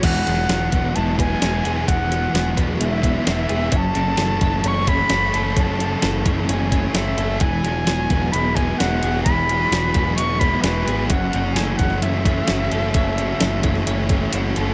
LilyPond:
<<
  \new Staff \with { instrumentName = "Flute" } { \time 4/4 \key e \major \tempo 4 = 130 fis''2 a''8 gis''4. | fis''4. r8 e''4 e''4 | a''2 cis'''8 b''4. | a''4. r8 gis''4 e''4 |
gis''2 b''8 gis''8 fis''4 | b''2 cis'''8 b''8 b'4 | fis''4 gis''8 fis''8 e''2~ | e''2. r4 | }
  \new Staff \with { instrumentName = "Clean electric guitar" } { \time 4/4 \key e \major gis4 gis'8 b8 gis8 b8 fis'8 gis'8 | gis4 gis'8 b8 gis8 b8 fis'8 gis'8 | cis'4 a'8 cis'8 cis'8 cis'8 e'8 a'8 | cis'4 a'8 cis'8 cis'8 cis'8 e'8 a'8 |
gis4 gis'8 b8 gis8 b8 fis'8 gis'8 | gis4 gis'8 b8 gis8 b8 fis'8 gis'8 | cis'4 a'8 cis'8 cis'8 cis'8 e'8 a'8 | cis'4 a'8 cis'8 cis'8 cis'8 e'8 a'8 | }
  \new Staff \with { instrumentName = "Distorted electric guitar" } { \time 4/4 \key e \major e8 gis'8 b8 fis8 b8 e'8 gis'8 b8 | e8 gis'8 b8 fis8 b8 e'8 gis'8 b8 | fis,8 a'8 a8 e8 a8 cis'8 a'8 a8 | fis,8 a'8 a8 e8 a8 cis'8 a'8 a8 |
e8 gis'8 b8 fis8 b8 e'8 gis'8 b8 | e8 gis'8 b8 fis8 b8 e'8 gis'8 b8 | fis,8 fis'8 a8 e8 a8 cis'8 fis'8 a8 | fis,8 fis'8 a8 e8 a8 cis'8 fis'8 a8 | }
  \new Staff \with { instrumentName = "Overdriven electric guitar" } { \time 4/4 \key e \major e8 fis8 fis8 b8 e'8 b8 e'8 gis'8 | e8 fis8 fis8 b8 e'8 b8 e'8 gis'8 | fis,8 cis8 e8 a8 cis'8 a8 cis'8 a'8 | fis,8 cis8 e8 a8 cis'8 a8 cis'8 a'8 |
e8 fis8 fis8 b8 e'8 b8 e'8 gis'8 | e8 fis8 fis8 b8 e'8 b8 e'8 gis'8 | fis,8 cis8 e8 a8 cis'8 a8 cis'8 a'8 | fis,8 cis8 e8 a8 cis'8 a8 cis'8 a'8 | }
  \new Staff \with { instrumentName = "Picked electric bass" } { \clef bass \time 4/4 \key e \major e,,8 e,,8 e,,8 e,,8 e,,4 e,,8 e,,8 | e,,4 e,,8 e,,8 e,,4 e,,8 e,,8 | fis,,8 fis,,8 fis,,8 fis,,8 fis,,4 fis,,8 fis,,8 | fis,,4 fis,,8 fis,,8 fis,,4 fis,,8 fis,,8 |
e,,8 e,,8 e,,8 e,,8 e,,4 e,,8 e,,8 | e,,4 e,,8 e,,8 e,,4 e,,8 gis,,8 | fis,,8 fis,,8 fis,,8 fis,,8 fis,,4 fis,,8 fis,,8 | fis,,4 fis,,8 fis,,8 fis,,4 fis,,8 fis,,8 | }
  \new DrumStaff \with { instrumentName = "Drums" } \drummode { \time 4/4 <cymc hh bd>8 hh8 <hh sn>8 <hh bd>8 hh8 <hh bd>8 <hh sn>8 hh8 | <hh bd>8 hh8 <hh sn>8 <hh bd>8 hh8 <hh bd>8 <hh sn>8 hh8 | <hh bd>8 hh8 <hh sn>8 <hh bd>8 hh8 <hh bd>8 <hh sn>8 hh8 | <hh bd>8 hh8 <hh sn>8 <hh bd>8 hh8 <hh bd>8 <hh sn>8 hh8 |
<hh bd>8 hh8 <hh sn>8 <hh bd>8 hh8 <hh bd>8 <hh sn>8 hh8 | <hh bd>8 hh8 <hh sn>8 <hh bd>8 hh8 <hh bd>8 <hh sn>8 hh8 | <hh bd>8 hh8 <hh sn>8 <hh bd>16 sn16 hh8 <hh bd>8 <hh sn>8 hh8 | <hh bd>8 hh8 <hh sn>8 <hh bd>16 sn16 hh8 <hh bd>8 hh8 hh8 | }
>>